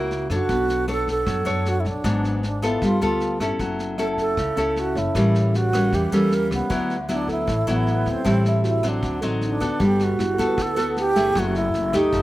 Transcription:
Already playing: upright bass C#2, nylon-string guitar C#3 A#3 E4, alto flute F#4
0.11 snare
0.30 upright bass F#2, nylon-string guitar D4 A4 C#5, alto flute F#4, kick, cross-stick, snare
0.49 upright bass B1, nylon-string guitar B3, kick, snare
0.69 snare
0.88 nylon-string guitar D4 A4 C#5, alto flute A4, cross-stick, snare
1.07 kick, snare
1.11 alto flute A4
1.26 upright bass F#2, nylon-string guitar F#3, kick, cross-stick, snare
1.45 upright bass F#2, nylon-string guitar D4 A4 C#5, snare
1.65 alto flute F#4, snare
1.80 alto flute E4
1.85 upright bass B1, alto flute D4, kick, snare
2.04 upright bass G#1, nylon-string guitar G#2 F#3 B3 D4, kick, cross-stick, snare
2.24 snare
2.43 alto flute D4, snare
2.62 nylon-string guitar B3 F4 A4, alto flute E4, kick, cross-stick, snare
2.82 upright bass G1, nylon-string guitar G3, alto flute F4, kick, snare
3.01 upright bass D2, nylon-string guitar B3 F4 A4, alto flute F4, snare
3.20 snare
3.40 upright bass G1, nylon-string guitar C#4 E4 A4, kick, cross-stick, snare
3.59 upright bass F#1, nylon-string guitar F#3, kick, snare
3.79 snare
3.98 nylon-string guitar C#4 E4 A4, alto flute A4, tine electric piano E5, cross-stick, snare
4.13 tine electric piano A5
4.18 alto flute A4, kick, snare
4.37 upright bass C#2, nylon-string guitar C#3, kick, cross-stick, snare
4.56 upright bass C#2, nylon-string guitar C#4 E4 A4, snare
4.76 alto flute F#4, snare
4.95 upright bass F#1, alto flute E4, tine electric piano C#5, kick, snare
5.15 upright bass A1, nylon-string guitar A2 G3 A#3 C#4, kick, cross-stick, snare
5.35 snare
5.54 alto flute F#4, snare
5.73 nylon-string guitar G3 A#3 C#4, kick, cross-stick, snare
5.93 upright bass E2, nylon-string guitar E3, alto flute G4, kick, snare
6.12 upright bass E2, nylon-string guitar G3 A#3 C#4, alto flute A4, snare
6.31 alto flute A#4, snare
6.51 upright bass C#2, alto flute B3, kick, cross-stick, snare
6.70 upright bass D2, nylon-string guitar D3 F#3 B3 E4, kick, snare
6.90 snare
7.09 nylon-string guitar F#3 B3 E4, alto flute D4, cross-stick, snare
7.28 alto flute E4, tine electric piano A4, kick, snare
7.47 upright bass A1, nylon-string guitar A2, kick, cross-stick, snare
7.67 upright bass A1, nylon-string guitar F#3 B3 E4, alto flute B3, snare
7.87 snare
8.06 upright bass D2, kick, snare
8.10 alto flute C4
8.24 upright bass A1, nylon-string guitar A2 G3 C4 E4, kick, cross-stick, snare
8.45 alto flute E4, snare
8.64 tine electric piano F#4, snare
8.68 alto flute E4
8.83 nylon-string guitar F#3 C4, kick, cross-stick, snare
8.88 alto flute D4
9.02 upright bass D2, nylon-string guitar D3, kick, snare
9.21 upright bass A1, nylon-string guitar F#3 C4 D#4, tine electric piano A4, snare
9.41 snare
9.46 alto flute D4
9.60 upright bass D2, nylon-string guitar B3 F#4 A4, kick, cross-stick, snare
9.80 upright bass G1, nylon-string guitar G3, kick, snare
9.85 alto flute G4
9.99 snare
10.04 alto flute F#4
10.19 upright bass G1, tine electric piano E4, cross-stick, snare
10.34 tine electric piano A4
10.38 upright bass D2, nylon-string guitar B3 F#4 A4, kick, snare
10.48 tine electric piano B4
10.58 nylon-string guitar D3, kick, cross-stick, snare
10.62 alto flute A4
10.76 nylon-string guitar B3 F#4 A4, snare
10.97 alto flute G4, snare
11.16 upright bass G1, nylon-string guitar A3 E4 G#4, kick, snare
11.35 upright bass F#1, nylon-string guitar F#3, alto flute F#4, kick, cross-stick, snare
11.55 alto flute E4, snare
11.74 upright bass F#1, snare
11.93 upright bass C#2, nylon-string guitar A3 D#4 G4, kick, cross-stick, snare
11.98 alto flute D#4
12.12 upright bass F1, nylon-string guitar F3, kick, snare

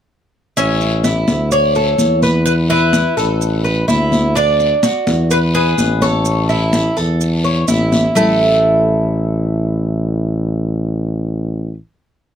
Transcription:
0.57 tuba A1, cuban tres C#4 E5, high conga, long guiro, maracas
0.81 high conga, maracas
1.04 cuban tres E4, high conga, short guiro, maracas
1.28 tuba D2, high conga, short guiro, maracas
1.51 cuban tres C#5 D5, high conga, long guiro, maracas
1.75 cuban tres A4, high conga, maracas
1.98 tuba E2, high conga, short guiro, maracas
2.22 cuban tres B4, high conga, short guiro, maracas
2.46 cuban tres B4, high conga, long guiro, maracas
2.70 cuban tres E4 B4, high conga, maracas
2.93 high conga, short guiro, maracas
3.17 tuba A1, cuban tres A4, short guiro, maracas
3.41 high conga, long guiro, maracas
3.64 cuban tres B4, high conga, maracas
3.88 tuba D2, cuban tres E4, high conga, short guiro, maracas
4.12 high conga, short guiro, maracas
4.35 cuban tres D4 D5, high conga, long guiro, maracas
4.60 high conga, maracas
4.83 cuban tres F#4, high conga, short guiro, maracas
5.07 tuba E2, high conga, short guiro, maracas
5.30 cuban tres B4, high conga, long guiro, maracas
5.54 cuban tres G#4 B4, high conga, maracas
5.78 tuba A1, high conga, short guiro, maracas
6.01 cuban tres A4 C#5, high conga, short guiro, maracas
6.25 high conga, long guiro, maracas
6.49 cuban tres E4, high conga, maracas
6.73 high conga, short guiro, maracas
6.96 tuba E2, cuban tres A4, short guiro, maracas
7.21 high conga, long guiro, maracas
7.44 cuban tres C#5, high conga, maracas
7.68 tuba A1, cuban tres E4, high conga, short guiro, maracas
7.92 high conga, short guiro, maracas
8.15 tuba A1, cuban tres A3 E4 A4, low conga, long guiro, maracas

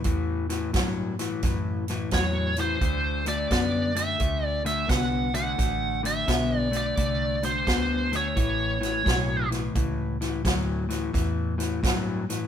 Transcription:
0.04 fingered electric bass E2, clean electric guitar A2 E3, kick, closed hi-hat
0.50 clean electric guitar A2 E3, snare, closed hi-hat
0.73 fingered electric bass G2, clean electric guitar A2 F#3, kick, snare, closed hi-hat
1.19 clean electric guitar A2 E3, snare, closed hi-hat
1.43 fingered electric bass F#2, clean electric guitar A2 E3, kick, snare, closed hi-hat
1.88 clean electric guitar A2 E3, snare, closed hi-hat
2.11 fingered electric bass E2, clean electric guitar A2 F#3, lead electric guitar C#5, kick, snare, closed hi-hat
2.56 clean electric guitar A2 E3, snare, closed hi-hat
2.60 lead electric guitar C5
2.81 fingered electric bass D2, clean electric guitar D3 A3, kick, closed hi-hat
3.26 clean electric guitar D3 A3, lead electric guitar D5, snare, closed hi-hat
3.51 fingered electric bass F#2, clean electric guitar D3 B3, lead electric guitar D5, kick, snare, closed hi-hat
3.95 clean electric guitar D3 A3, lead electric guitar E5, snare, closed hi-hat
4.20 fingered electric bass D2, clean electric guitar D3 A3, kick, closed hi-hat
4.46 lead electric guitar D5
4.65 clean electric guitar D3 A3, lead electric guitar E5, snare, closed hi-hat
4.88 fingered electric bass C2, clean electric guitar D3 B3, lead electric guitar F#5, kick, snare, closed hi-hat
5.34 clean electric guitar D3 A3, lead electric guitar F#5, snare, closed hi-hat
5.58 fingered electric bass A1, clean electric guitar D3 A3, kick, snare, closed hi-hat
6.03 clean electric guitar D3 A3, lead electric guitar E5, snare, closed hi-hat
6.28 fingered electric bass B1, clean electric guitar D3 B3, kick, snare, closed hi-hat
6.59 lead electric guitar D5
6.71 clean electric guitar D3 A3, snare, closed hi-hat
6.77 lead electric guitar D5
6.97 fingered electric bass C2, clean electric guitar D3 A3, kick, closed hi-hat
7.43 clean electric guitar D3 A3, lead electric guitar C5, snare, closed hi-hat
7.67 fingered electric bass D2, clean electric guitar D3 B3, kick, snare, closed hi-hat
8.12 clean electric guitar D3 A3, snare, closed hi-hat
8.16 lead electric guitar C#5
8.36 fingered electric bass A1, clean electric guitar A2 E3, kick, closed hi-hat
8.81 clean electric guitar A2 E3, snare, closed hi-hat
9.05 fingered electric bass B1, clean electric guitar A2 F#3, kick, snare, closed hi-hat
9.51 clean electric guitar A2 E3, snare, closed hi-hat
9.75 fingered electric bass C#2, clean electric guitar A2 E3, kick, closed hi-hat
10.21 clean electric guitar A2 E3, snare, closed hi-hat
10.44 fingered electric bass D2, clean electric guitar A2 F#3, kick, snare, closed hi-hat
10.89 clean electric guitar A2 E3, snare, closed hi-hat
11.14 fingered electric bass E2, clean electric guitar A2 E3, kick, snare, closed hi-hat
11.58 clean electric guitar A2 E3, snare, closed hi-hat
11.83 fingered electric bass G2, clean electric guitar A2 F#3, kick, snare, closed hi-hat
12.30 clean electric guitar A2 E3, snare, closed hi-hat

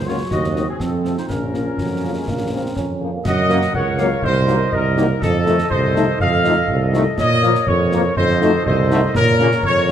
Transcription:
Already playing: tuba C#2, trombone section F#3 A#3
0.06 french horn section C#3 F#3 A#3, woodwind section F4, trumpet section C#5
0.31 tuba D#2, trombone section C4, woodwind section F#4, trumpet section D#5, concert bass drum, snare
0.44 snare
0.55 french horn section D#3 F#3 C4, snare
0.69 woodwind section C4, trumpet section G#4
0.80 tuba F2, trombone section F3, woodwind section C4, trumpet section A4, concert bass drum, snare
1.04 french horn section C3 F3 C4, snare
1.17 woodwind section D#4, trumpet section C5, snare
1.27 tuba A#1, trombone section F3 C#4, woodwind section C#4, trumpet section A#4, concert bass drum, snare
1.53 french horn section C#3 F3 A#3, snare
1.78 tuba F2, euphonium F#3, concert bass drum, snare
2.03 french horn section C#3 F3 A#3
2.15 euphonium G#3
2.27 tuba A#1, euphonium A#3, concert bass drum, snare
2.52 french horn section C#3 F3 A#3, euphonium C4
2.76 tuba F2, euphonium C#4, concert bass drum, snare
3.00 french horn section C#3 F3 A#3
3.13 euphonium A#3
3.25 tuba F#2, woodwind section A#4 F#5, trumpet section D#5, concert bass drum, snare, crash
3.48 trombone section F#3 A#3, french horn section F#3 A#3 C#4, snare
3.61 snare
3.74 tuba C#2, woodwind section A#4 F#5, trumpet section C#5, concert bass drum
3.98 trombone section F#3 A#3, french horn section F#3 A#3 C#4, woodwind section F5, snare
4.22 tuba C2, woodwind section A#4 D#5, trumpet section C5, concert bass drum
4.47 trombone section D#3 A#3, french horn section F#3 A#3 D#4, snare
4.71 tuba C2, woodwind section A#4 D#5, trumpet section A#4, concert bass drum
4.96 trombone section D#3 A#3, french horn section F#3 A#3 D#4, snare
5.21 tuba F2, woodwind section A4 D#5, trumpet section A4, concert bass drum, snare
5.46 trombone section D#3 A3, french horn section F3 A3 D#4, snare
5.58 snare
5.70 tuba C2, woodwind section A4 D#5, trumpet section C5, concert bass drum
5.95 trombone section D#3 A3, french horn section F3 A3 D#4, snare
6.20 tuba F2, woodwind section A4 D#5, trumpet section F5, concert bass drum
6.44 trombone section D#3 A3, french horn section F3 A3 D#4, snare
6.68 tuba C2, concert bass drum
6.93 trombone section D#3 A3, french horn section F3 A3 D#4, snare
7.18 tuba A#2, woodwind section A#4 C#5, trumpet section D#5, concert bass drum, snare, crash
7.43 trombone section F3 A#3, french horn section F3 A#3 F4, snare
7.55 snare
7.67 tuba F2, woodwind section A#4 C#5, trumpet section C#5, concert bass drum
7.92 french horn section F3 A#3 F4, trombone section F3 A#3, snare
8.16 tuba F2, woodwind section A4 D#5, trumpet section C5, concert bass drum
8.41 trombone section D#3 A3, french horn section A3 D#4 F#4, snare
8.65 tuba C2, woodwind section A4 D#5, trumpet section C5, concert bass drum
8.91 trombone section D#3 A3, french horn section A3 D#4 F#4, snare
9.15 tuba A#2, trumpet section A#4, woodwind section A#4 C#5, concert bass drum, snare
9.39 trombone section C#3 A#3, french horn section A#3 C#4 F4, snare
9.51 snare
9.63 tuba F2, woodwind section A#4 C#5, trumpet section C#5, concert bass drum
9.88 trombone section C#3

